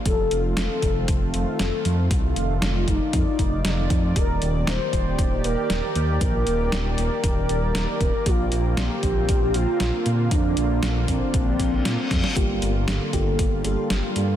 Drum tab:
HH |x-x-x-x-x-x-x-x-|x-x-x-x-x-x-x-x-|x-x-x-x-x-x-x-x-|x-x-x-x-x-x-x-x-|
SD |----o-------o---|----o-------o---|----o-------o---|----o-------o---|
BD |o-----o-o-------|o-----o-o-o---o-|o-----o-o-------|o-------o-----o-|

HH |x-x-x-x-x-x-x-x-|x-x-x-x-x-x-x-x-|x-x-x-x-x-x-x-x-|
SD |----o-------o---|----o-------o-oo|----o-------o---|
BD |o-----o-o-------|o-----o-o-o---o-|o-----o-o-------|